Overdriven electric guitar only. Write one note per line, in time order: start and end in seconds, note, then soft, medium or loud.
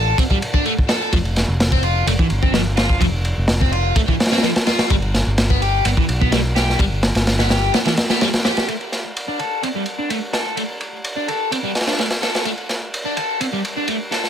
0.00 0.17 A4 medium
0.18 0.23 C4 loud
0.30 0.37 G3 medium
0.53 0.64 D4 medium
0.65 0.73 A3 medium
0.88 1.11 A4 medium
1.13 1.17 F3 loud
1.72 1.82 C4 medium
1.83 2.06 F4 medium
2.07 2.11 A3 loud
2.19 2.26 E3 medium
2.43 2.53 C4 medium
2.54 2.61 F3 medium
2.77 3.00 F4 medium
3.01 3.06 F3 loud
3.61 3.71 C4 medium
3.72 3.95 F4 medium
3.95 4.00 A3 loud
4.08 4.15 E3 medium
4.31 4.42 C4 medium
4.43 4.50 F3 medium
4.67 4.89 F4 medium
4.90 4.95 G3 loud
5.50 5.60 B3 medium
5.61 5.84 G4 medium
5.85 5.89 B3 loud
5.97 6.04 E3 medium
6.21 6.31 B3 medium
6.32 6.40 G3 medium
6.56 6.78 G4 medium
6.80 6.84 G3 loud
7.39 7.49 B3 medium
7.51 7.73 G4 medium
7.74 7.78 B3 loud
7.86 7.93 E3 medium
8.10 8.20 B3 medium
8.21 8.29 G3 medium
8.45 8.67 G4 medium
8.68 8.73 A3 medium
9.28 9.38 D4 medium
9.39 9.62 A4 medium
9.63 9.67 C4 medium
9.75 9.82 G3 medium
9.98 10.09 D4 medium
10.10 10.18 A3 medium
10.34 10.56 A4 medium
10.57 10.62 A3 medium
11.16 11.27 D4 medium
11.28 11.51 A4 medium
11.51 11.56 C4 medium
11.64 11.71 G3 medium
11.87 11.98 D4 medium
11.99 12.06 A3 medium
12.22 12.45 A4 medium
12.45 12.50 A3 medium
13.05 13.16 D4 medium
13.17 13.39 A4 medium
13.41 13.45 C4 medium
13.53 13.60 G3 medium
13.77 13.87 D4 medium
13.88 13.95 A3 medium
14.11 14.29 A4 medium